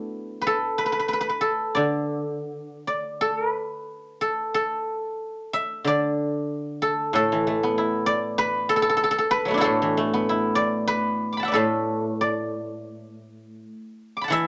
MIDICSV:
0, 0, Header, 1, 2, 480
1, 0, Start_track
1, 0, Tempo, 647249
1, 352, Time_signature, 4, 2, 24, 8
1, 1320, Tempo, 700935
1, 2280, Tempo, 676437
1, 3720, Tempo, 643777
1, 5160, Tempo, 630915
1, 8520, Tempo, 689655
1, 10546, End_track
2, 0, Start_track
2, 0, Title_t, "Guzheng"
2, 0, Program_c, 0, 107
2, 0, Note_on_c, 0, 57, 48
2, 0, Note_on_c, 0, 59, 52
2, 0, Note_on_c, 0, 62, 50
2, 0, Note_on_c, 0, 64, 54
2, 0, Note_on_c, 0, 66, 55
2, 0, Note_on_c, 0, 69, 82
2, 0, Note_on_c, 0, 71, 93
2, 235, Note_off_c, 0, 71, 0
2, 308, Note_on_c, 0, 71, 58
2, 343, Note_off_c, 0, 69, 0
2, 346, Note_on_c, 0, 69, 75
2, 577, Note_off_c, 0, 71, 0
2, 580, Note_on_c, 0, 71, 74
2, 633, Note_off_c, 0, 71, 0
2, 636, Note_on_c, 0, 71, 54
2, 682, Note_off_c, 0, 71, 0
2, 685, Note_on_c, 0, 71, 63
2, 735, Note_off_c, 0, 71, 0
2, 738, Note_on_c, 0, 71, 55
2, 801, Note_off_c, 0, 71, 0
2, 804, Note_on_c, 0, 71, 59
2, 837, Note_off_c, 0, 71, 0
2, 840, Note_on_c, 0, 71, 53
2, 892, Note_off_c, 0, 71, 0
2, 895, Note_on_c, 0, 71, 60
2, 957, Note_off_c, 0, 71, 0
2, 960, Note_on_c, 0, 71, 46
2, 1042, Note_off_c, 0, 69, 0
2, 1045, Note_on_c, 0, 69, 68
2, 1177, Note_off_c, 0, 66, 0
2, 1289, Note_off_c, 0, 64, 0
2, 1296, Note_on_c, 0, 74, 75
2, 1308, Note_on_c, 0, 50, 47
2, 1403, Note_off_c, 0, 62, 0
2, 1591, Note_off_c, 0, 59, 0
2, 1722, Note_off_c, 0, 57, 0
2, 2066, Note_off_c, 0, 74, 0
2, 2069, Note_on_c, 0, 74, 58
2, 2297, Note_off_c, 0, 71, 0
2, 2300, Note_off_c, 0, 69, 0
2, 2300, Note_on_c, 0, 69, 73
2, 2427, Note_off_c, 0, 69, 0
2, 2427, Note_on_c, 0, 70, 73
2, 2505, Note_off_c, 0, 70, 0
2, 2505, Note_on_c, 0, 71, 73
2, 2756, Note_off_c, 0, 50, 0
2, 3010, Note_on_c, 0, 69, 64
2, 3244, Note_off_c, 0, 69, 0
2, 3247, Note_on_c, 0, 69, 70
2, 3371, Note_off_c, 0, 74, 0
2, 3752, Note_off_c, 0, 71, 0
2, 3960, Note_on_c, 0, 76, 80
2, 4192, Note_on_c, 0, 50, 53
2, 4214, Note_on_c, 0, 74, 80
2, 4859, Note_off_c, 0, 69, 0
2, 4920, Note_on_c, 0, 69, 71
2, 5152, Note_on_c, 0, 45, 59
2, 5165, Note_off_c, 0, 69, 0
2, 5168, Note_on_c, 0, 69, 85
2, 5245, Note_off_c, 0, 76, 0
2, 5296, Note_on_c, 0, 52, 44
2, 5409, Note_on_c, 0, 57, 46
2, 5534, Note_on_c, 0, 59, 44
2, 5599, Note_off_c, 0, 74, 0
2, 5634, Note_off_c, 0, 50, 0
2, 5644, Note_on_c, 0, 64, 44
2, 5860, Note_on_c, 0, 74, 88
2, 6103, Note_on_c, 0, 71, 103
2, 6244, Note_off_c, 0, 52, 0
2, 6335, Note_off_c, 0, 69, 0
2, 6338, Note_on_c, 0, 69, 83
2, 6361, Note_off_c, 0, 57, 0
2, 6389, Note_off_c, 0, 69, 0
2, 6392, Note_on_c, 0, 69, 64
2, 6435, Note_off_c, 0, 69, 0
2, 6438, Note_on_c, 0, 69, 77
2, 6485, Note_off_c, 0, 59, 0
2, 6490, Note_off_c, 0, 69, 0
2, 6493, Note_on_c, 0, 69, 68
2, 6546, Note_off_c, 0, 69, 0
2, 6549, Note_on_c, 0, 69, 70
2, 6593, Note_off_c, 0, 45, 0
2, 6597, Note_off_c, 0, 69, 0
2, 6600, Note_off_c, 0, 64, 0
2, 6600, Note_on_c, 0, 69, 69
2, 6652, Note_off_c, 0, 69, 0
2, 6655, Note_on_c, 0, 69, 74
2, 6711, Note_off_c, 0, 69, 0
2, 6714, Note_on_c, 0, 69, 63
2, 6804, Note_off_c, 0, 71, 0
2, 6807, Note_on_c, 0, 71, 86
2, 6917, Note_on_c, 0, 54, 42
2, 6939, Note_on_c, 0, 57, 47
2, 6959, Note_on_c, 0, 59, 47
2, 6984, Note_on_c, 0, 62, 54
2, 7011, Note_on_c, 0, 64, 57
2, 7034, Note_on_c, 0, 66, 63
2, 7036, Note_off_c, 0, 69, 0
2, 7040, Note_on_c, 0, 69, 87
2, 7057, Note_off_c, 0, 54, 0
2, 7061, Note_on_c, 0, 45, 65
2, 7196, Note_on_c, 0, 52, 49
2, 7265, Note_off_c, 0, 74, 0
2, 7310, Note_off_c, 0, 57, 0
2, 7313, Note_on_c, 0, 57, 50
2, 7434, Note_off_c, 0, 59, 0
2, 7437, Note_on_c, 0, 59, 48
2, 7553, Note_off_c, 0, 64, 0
2, 7556, Note_on_c, 0, 64, 52
2, 7755, Note_on_c, 0, 74, 90
2, 7997, Note_off_c, 0, 71, 0
2, 8000, Note_on_c, 0, 71, 91
2, 8147, Note_off_c, 0, 52, 0
2, 8270, Note_off_c, 0, 57, 0
2, 8343, Note_on_c, 0, 86, 36
2, 8377, Note_on_c, 0, 83, 37
2, 8397, Note_on_c, 0, 81, 41
2, 8398, Note_off_c, 0, 59, 0
2, 8420, Note_on_c, 0, 78, 43
2, 8436, Note_on_c, 0, 76, 46
2, 8455, Note_off_c, 0, 74, 0
2, 8458, Note_on_c, 0, 74, 50
2, 8485, Note_off_c, 0, 71, 0
2, 8488, Note_on_c, 0, 71, 47
2, 8499, Note_off_c, 0, 69, 0
2, 8502, Note_on_c, 0, 69, 79
2, 8505, Note_off_c, 0, 45, 0
2, 8515, Note_on_c, 0, 45, 61
2, 8525, Note_off_c, 0, 64, 0
2, 8852, Note_off_c, 0, 66, 0
2, 8970, Note_off_c, 0, 74, 0
2, 8973, Note_on_c, 0, 74, 69
2, 9063, Note_off_c, 0, 62, 0
2, 9206, Note_off_c, 0, 86, 0
2, 9328, Note_off_c, 0, 83, 0
2, 9415, Note_off_c, 0, 81, 0
2, 9545, Note_off_c, 0, 78, 0
2, 9640, Note_off_c, 0, 76, 0
2, 9914, Note_off_c, 0, 71, 0
2, 9960, Note_off_c, 0, 45, 0
2, 10031, Note_off_c, 0, 69, 0
2, 10258, Note_off_c, 0, 74, 0
2, 10335, Note_on_c, 0, 86, 41
2, 10368, Note_on_c, 0, 83, 44
2, 10386, Note_on_c, 0, 81, 48
2, 10414, Note_on_c, 0, 78, 51
2, 10428, Note_on_c, 0, 52, 58
2, 10442, Note_on_c, 0, 76, 90
2, 10546, Note_off_c, 0, 52, 0
2, 10546, Note_off_c, 0, 76, 0
2, 10546, Note_off_c, 0, 78, 0
2, 10546, Note_off_c, 0, 81, 0
2, 10546, Note_off_c, 0, 83, 0
2, 10546, Note_off_c, 0, 86, 0
2, 10546, End_track
0, 0, End_of_file